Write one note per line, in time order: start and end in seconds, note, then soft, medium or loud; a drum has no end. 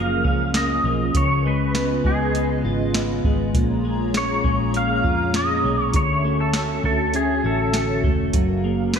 0.00 0.21 F#1 medium
0.00 1.14 F#2 medium
0.00 0.85 F3 medium
0.00 1.12 F3 medium
0.00 0.53 A#3 medium
0.00 3.50 C#4 medium
0.00 5.90 F4 medium
0.00 1.12 G#4 medium
0.00 1.12 A#4 medium
0.00 0.56 F5 medium
0.24 0.81 C#2 medium
0.24 1.78 C#4 medium
0.24 kick medium
0.54 1.20 A#3 medium
0.54 1.17 D#5 medium
0.54 snare medium
0.54 closed hi-hat medium
0.84 1.13 B1 medium
0.84 1.45 F3 medium
1.14 2.00 C#2 medium
1.14 3.54 C#3 medium
1.14 3.52 C#3 medium
1.14 3.52 B4 medium
1.14 1.46 C#5 medium
1.14 3.53 D#5 medium
1.14 kick medium
1.14 closed hi-hat medium
1.46 2.04 G#3 medium
1.46 2.07 B4 medium
1.75 2.34 B3 medium
1.75 snare medium
1.75 closed hi-hat medium
2.04 2.61 C#2 medium
2.04 3.25 G#3 medium
2.04 2.61 G#4 medium
2.04 kick medium
2.35 2.93 B3 medium
2.35 closed hi-hat medium
2.64 3.21 G#1 medium
2.64 5.04 F4 medium
2.94 3.60 B3 medium
2.94 snare medium
2.94 closed hi-hat medium
3.24 3.53 G#1 medium
3.24 3.84 G#3 medium
3.24 kick loud
3.55 4.40 A#1 medium
3.55 5.95 A#2 medium
3.55 5.93 A#3 medium
3.55 5.92 G#4 medium
3.55 8.31 C#5 medium
3.55 5.92 A#5 medium
3.55 kick loud
3.55 closed hi-hat medium
3.85 4.43 G#3 medium
4.14 4.73 C#4 medium
4.14 4.72 C#5 medium
4.14 snare loud
4.14 closed hi-hat medium
4.44 5.01 A#1 medium
4.44 5.64 G#3 medium
4.44 kick medium
4.74 5.34 C#4 soft
4.74 5.31 F5 medium
4.74 closed hi-hat medium
5.04 5.61 F2 medium
5.04 6.00 F4 medium
5.04 kick medium
5.34 6.54 C#4 medium
5.34 5.83 D#5 medium
5.34 snare medium
5.34 closed hi-hat medium
5.64 5.93 B1 medium
5.64 6.00 G#3 medium
5.83 5.96 C#5 medium
5.93 6.80 D2 medium
5.93 8.31 D3 medium
5.93 8.33 D3 medium
5.93 8.32 C#4 medium
5.93 8.32 F#4 medium
5.93 6.41 C#5 medium
5.93 8.32 E5 medium
5.93 kick loud
5.93 closed hi-hat medium
6.25 6.83 A3 medium
6.40 6.84 A4 medium
6.53 7.14 C#4 medium
6.53 snare loud
6.53 closed hi-hat medium
6.83 7.41 D2 medium
6.83 8.03 A3 medium
6.83 7.13 A4 medium
6.83 kick medium
7.14 7.74 C#4 medium
7.14 7.46 G#4 medium
7.14 closed hi-hat medium
7.44 8.01 A1 medium
7.44 8.99 F#4 medium
7.44 8.01 A4 medium
7.74 8.93 C#4 medium
7.74 snare medium
7.74 closed hi-hat medium
8.03 8.32 E1 medium
8.03 8.40 A3 soft
8.03 kick loud
8.33 8.99 F#1 medium
8.33 8.99 F#3 medium
8.33 8.99 C#4 medium
8.33 8.99 G#4 medium
8.33 8.99 A#4 medium
8.33 8.99 F5 medium
8.33 kick loud
8.33 closed hi-hat medium
8.64 8.99 A#3 medium
8.94 8.99 C#4 medium
8.94 8.99 C#5 medium
8.94 snare loud
8.94 closed hi-hat medium